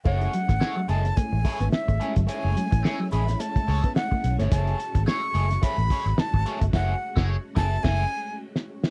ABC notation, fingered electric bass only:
X:1
M:4/4
L:1/16
Q:"Swing 16ths" 1/4=108
K:F#dor
V:1 name="Fingered electric bass" clef=bass
F,,,2 z G,,, z2 F,,,2 z A,,, z G,,, z G,,, z =G,,, | z F,,, z A,,, z2 A,,,2 z2 C,, z3 B,,, =G,,, | F,,,2 z G,,, z2 F,,,2 z A,,, z G,,, z G,,, z =G,,, | F,,,2 z F,,,2 z F,,,2 F,,,2 z6 |]